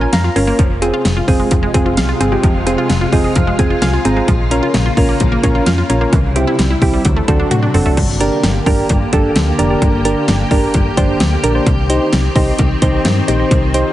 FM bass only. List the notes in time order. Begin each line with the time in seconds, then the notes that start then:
0.13 F2
0.36 G1
0.59 F1
1.05 F1
1.28 F1
1.51 F1
1.74 F1
1.97 C2
2.20 G1
2.43 F1
2.90 F1
3.12 F1
3.36 F1
3.59 F1
3.82 C2
4.05 G#1
4.28 A#1
4.74 A#1
4.97 A#1
5.21 A#1
5.44 A#1
5.67 F2
5.90 A#1
6.13 C2
6.59 C2
6.82 C2
7.05 D2
7.28 D2
7.51 A2
7.74 F#1
7.97 G1
8.43 G1
8.66 G1
8.90 G1
9.13 G1
9.36 D2
9.59 F1
9.82 G1
10.28 G1
10.51 G1
10.74 G1
10.97 G1
11.20 D2
11.44 A#1
11.67 C2
12.13 C2
12.36 C2
12.59 C2
12.82 C2
13.05 G2
13.28 A#1
13.51 C2